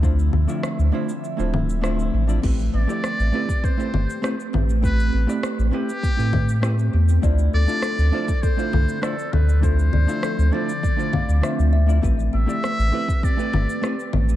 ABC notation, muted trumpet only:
X:1
M:4/4
L:1/8
Q:1/4=100
K:Am
V:1 name="Muted trumpet"
z8 | z d3 c3 z | B2 z G4 z | z d3 c2 A B |
c3 d4 z | z e3 d3 z |]